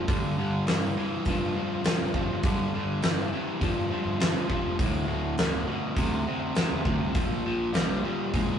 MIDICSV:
0, 0, Header, 1, 4, 480
1, 0, Start_track
1, 0, Tempo, 589391
1, 73, Time_signature, 4, 2, 24, 8
1, 6995, End_track
2, 0, Start_track
2, 0, Title_t, "Overdriven electric guitar"
2, 0, Program_c, 0, 29
2, 62, Note_on_c, 0, 43, 77
2, 64, Note_on_c, 0, 50, 86
2, 283, Note_off_c, 0, 43, 0
2, 284, Note_off_c, 0, 50, 0
2, 303, Note_on_c, 0, 43, 70
2, 312, Note_on_c, 0, 50, 73
2, 523, Note_off_c, 0, 43, 0
2, 528, Note_off_c, 0, 50, 0
2, 544, Note_on_c, 0, 52, 82
2, 545, Note_on_c, 0, 43, 80
2, 763, Note_off_c, 0, 52, 0
2, 764, Note_off_c, 0, 43, 0
2, 789, Note_on_c, 0, 43, 60
2, 791, Note_on_c, 0, 52, 81
2, 1006, Note_off_c, 0, 43, 0
2, 1007, Note_off_c, 0, 52, 0
2, 1035, Note_on_c, 0, 53, 101
2, 1037, Note_on_c, 0, 43, 85
2, 1248, Note_off_c, 0, 53, 0
2, 1249, Note_off_c, 0, 43, 0
2, 1263, Note_on_c, 0, 43, 71
2, 1273, Note_on_c, 0, 53, 73
2, 1482, Note_off_c, 0, 43, 0
2, 1487, Note_off_c, 0, 53, 0
2, 1502, Note_on_c, 0, 43, 73
2, 1506, Note_on_c, 0, 53, 89
2, 1722, Note_off_c, 0, 43, 0
2, 1724, Note_off_c, 0, 53, 0
2, 1746, Note_on_c, 0, 43, 68
2, 1749, Note_on_c, 0, 53, 73
2, 1963, Note_off_c, 0, 43, 0
2, 1965, Note_off_c, 0, 53, 0
2, 1990, Note_on_c, 0, 43, 77
2, 1994, Note_on_c, 0, 50, 86
2, 2205, Note_off_c, 0, 43, 0
2, 2207, Note_off_c, 0, 50, 0
2, 2231, Note_on_c, 0, 43, 69
2, 2235, Note_on_c, 0, 50, 73
2, 2446, Note_off_c, 0, 43, 0
2, 2448, Note_off_c, 0, 50, 0
2, 2458, Note_on_c, 0, 43, 82
2, 2463, Note_on_c, 0, 52, 90
2, 2679, Note_off_c, 0, 43, 0
2, 2681, Note_off_c, 0, 52, 0
2, 2710, Note_on_c, 0, 43, 67
2, 2714, Note_on_c, 0, 52, 77
2, 2925, Note_off_c, 0, 43, 0
2, 2927, Note_off_c, 0, 52, 0
2, 2942, Note_on_c, 0, 43, 86
2, 2948, Note_on_c, 0, 53, 99
2, 3161, Note_off_c, 0, 43, 0
2, 3164, Note_off_c, 0, 53, 0
2, 3184, Note_on_c, 0, 53, 75
2, 3186, Note_on_c, 0, 43, 66
2, 3402, Note_off_c, 0, 53, 0
2, 3403, Note_off_c, 0, 43, 0
2, 3421, Note_on_c, 0, 43, 74
2, 3424, Note_on_c, 0, 53, 82
2, 3640, Note_off_c, 0, 43, 0
2, 3642, Note_off_c, 0, 53, 0
2, 3654, Note_on_c, 0, 43, 61
2, 3657, Note_on_c, 0, 53, 76
2, 3877, Note_off_c, 0, 43, 0
2, 3878, Note_off_c, 0, 53, 0
2, 3900, Note_on_c, 0, 38, 73
2, 3902, Note_on_c, 0, 45, 83
2, 4120, Note_off_c, 0, 38, 0
2, 4121, Note_off_c, 0, 45, 0
2, 4131, Note_on_c, 0, 38, 65
2, 4133, Note_on_c, 0, 45, 73
2, 4356, Note_off_c, 0, 38, 0
2, 4357, Note_off_c, 0, 45, 0
2, 4387, Note_on_c, 0, 38, 69
2, 4389, Note_on_c, 0, 47, 82
2, 4604, Note_off_c, 0, 38, 0
2, 4605, Note_off_c, 0, 47, 0
2, 4618, Note_on_c, 0, 38, 63
2, 4619, Note_on_c, 0, 47, 73
2, 4840, Note_off_c, 0, 38, 0
2, 4840, Note_off_c, 0, 47, 0
2, 4854, Note_on_c, 0, 38, 80
2, 4861, Note_on_c, 0, 48, 86
2, 5078, Note_off_c, 0, 38, 0
2, 5081, Note_off_c, 0, 48, 0
2, 5103, Note_on_c, 0, 38, 64
2, 5109, Note_on_c, 0, 48, 77
2, 5322, Note_off_c, 0, 38, 0
2, 5326, Note_off_c, 0, 48, 0
2, 5335, Note_on_c, 0, 38, 75
2, 5345, Note_on_c, 0, 48, 83
2, 5559, Note_off_c, 0, 38, 0
2, 5564, Note_off_c, 0, 48, 0
2, 5581, Note_on_c, 0, 38, 62
2, 5582, Note_on_c, 0, 48, 76
2, 5802, Note_off_c, 0, 38, 0
2, 5803, Note_off_c, 0, 48, 0
2, 5822, Note_on_c, 0, 46, 80
2, 5831, Note_on_c, 0, 53, 83
2, 6043, Note_off_c, 0, 46, 0
2, 6048, Note_off_c, 0, 53, 0
2, 6067, Note_on_c, 0, 46, 67
2, 6069, Note_on_c, 0, 53, 74
2, 6286, Note_off_c, 0, 46, 0
2, 6287, Note_off_c, 0, 53, 0
2, 6296, Note_on_c, 0, 46, 73
2, 6299, Note_on_c, 0, 55, 84
2, 6521, Note_off_c, 0, 46, 0
2, 6522, Note_off_c, 0, 55, 0
2, 6543, Note_on_c, 0, 46, 74
2, 6546, Note_on_c, 0, 55, 77
2, 6765, Note_off_c, 0, 46, 0
2, 6767, Note_off_c, 0, 55, 0
2, 6788, Note_on_c, 0, 46, 79
2, 6792, Note_on_c, 0, 56, 89
2, 6995, Note_off_c, 0, 46, 0
2, 6995, Note_off_c, 0, 56, 0
2, 6995, End_track
3, 0, Start_track
3, 0, Title_t, "Picked electric bass"
3, 0, Program_c, 1, 34
3, 65, Note_on_c, 1, 31, 81
3, 515, Note_off_c, 1, 31, 0
3, 547, Note_on_c, 1, 31, 82
3, 768, Note_off_c, 1, 31, 0
3, 1027, Note_on_c, 1, 43, 97
3, 1248, Note_off_c, 1, 43, 0
3, 1638, Note_on_c, 1, 31, 81
3, 1963, Note_off_c, 1, 31, 0
3, 1982, Note_on_c, 1, 31, 85
3, 2432, Note_off_c, 1, 31, 0
3, 2472, Note_on_c, 1, 31, 88
3, 2689, Note_off_c, 1, 31, 0
3, 2943, Note_on_c, 1, 31, 84
3, 3164, Note_off_c, 1, 31, 0
3, 3299, Note_on_c, 1, 31, 78
3, 3523, Note_off_c, 1, 31, 0
3, 3795, Note_on_c, 1, 29, 84
3, 3901, Note_off_c, 1, 29, 0
3, 3907, Note_on_c, 1, 26, 84
3, 4355, Note_off_c, 1, 26, 0
3, 4391, Note_on_c, 1, 26, 88
3, 4610, Note_off_c, 1, 26, 0
3, 4857, Note_on_c, 1, 38, 89
3, 5082, Note_off_c, 1, 38, 0
3, 5468, Note_on_c, 1, 40, 79
3, 5577, Note_off_c, 1, 40, 0
3, 5582, Note_on_c, 1, 38, 75
3, 5694, Note_off_c, 1, 38, 0
3, 5706, Note_on_c, 1, 36, 78
3, 5816, Note_off_c, 1, 36, 0
3, 5822, Note_on_c, 1, 34, 82
3, 6275, Note_off_c, 1, 34, 0
3, 6308, Note_on_c, 1, 34, 86
3, 6530, Note_off_c, 1, 34, 0
3, 6790, Note_on_c, 1, 34, 88
3, 6995, Note_off_c, 1, 34, 0
3, 6995, End_track
4, 0, Start_track
4, 0, Title_t, "Drums"
4, 66, Note_on_c, 9, 46, 54
4, 67, Note_on_c, 9, 36, 107
4, 148, Note_off_c, 9, 36, 0
4, 148, Note_off_c, 9, 46, 0
4, 545, Note_on_c, 9, 46, 54
4, 555, Note_on_c, 9, 38, 96
4, 627, Note_off_c, 9, 46, 0
4, 636, Note_off_c, 9, 38, 0
4, 1020, Note_on_c, 9, 46, 51
4, 1025, Note_on_c, 9, 36, 81
4, 1101, Note_off_c, 9, 46, 0
4, 1107, Note_off_c, 9, 36, 0
4, 1502, Note_on_c, 9, 46, 56
4, 1512, Note_on_c, 9, 38, 105
4, 1583, Note_off_c, 9, 46, 0
4, 1593, Note_off_c, 9, 38, 0
4, 1743, Note_on_c, 9, 36, 75
4, 1825, Note_off_c, 9, 36, 0
4, 1980, Note_on_c, 9, 46, 50
4, 1983, Note_on_c, 9, 36, 106
4, 2061, Note_off_c, 9, 46, 0
4, 2065, Note_off_c, 9, 36, 0
4, 2463, Note_on_c, 9, 46, 49
4, 2473, Note_on_c, 9, 38, 95
4, 2545, Note_off_c, 9, 46, 0
4, 2554, Note_off_c, 9, 38, 0
4, 2943, Note_on_c, 9, 36, 78
4, 2944, Note_on_c, 9, 46, 49
4, 3024, Note_off_c, 9, 36, 0
4, 3026, Note_off_c, 9, 46, 0
4, 3423, Note_on_c, 9, 46, 51
4, 3433, Note_on_c, 9, 38, 107
4, 3505, Note_off_c, 9, 46, 0
4, 3514, Note_off_c, 9, 38, 0
4, 3662, Note_on_c, 9, 36, 78
4, 3743, Note_off_c, 9, 36, 0
4, 3902, Note_on_c, 9, 36, 96
4, 3907, Note_on_c, 9, 46, 55
4, 3984, Note_off_c, 9, 36, 0
4, 3988, Note_off_c, 9, 46, 0
4, 4379, Note_on_c, 9, 46, 52
4, 4389, Note_on_c, 9, 38, 97
4, 4460, Note_off_c, 9, 46, 0
4, 4470, Note_off_c, 9, 38, 0
4, 4858, Note_on_c, 9, 36, 86
4, 4860, Note_on_c, 9, 46, 57
4, 4939, Note_off_c, 9, 36, 0
4, 4941, Note_off_c, 9, 46, 0
4, 5337, Note_on_c, 9, 46, 58
4, 5347, Note_on_c, 9, 38, 103
4, 5418, Note_off_c, 9, 46, 0
4, 5428, Note_off_c, 9, 38, 0
4, 5581, Note_on_c, 9, 36, 81
4, 5662, Note_off_c, 9, 36, 0
4, 5819, Note_on_c, 9, 46, 52
4, 5823, Note_on_c, 9, 36, 104
4, 5900, Note_off_c, 9, 46, 0
4, 5904, Note_off_c, 9, 36, 0
4, 6303, Note_on_c, 9, 46, 49
4, 6312, Note_on_c, 9, 38, 91
4, 6384, Note_off_c, 9, 46, 0
4, 6394, Note_off_c, 9, 38, 0
4, 6789, Note_on_c, 9, 36, 82
4, 6790, Note_on_c, 9, 46, 49
4, 6871, Note_off_c, 9, 36, 0
4, 6871, Note_off_c, 9, 46, 0
4, 6995, End_track
0, 0, End_of_file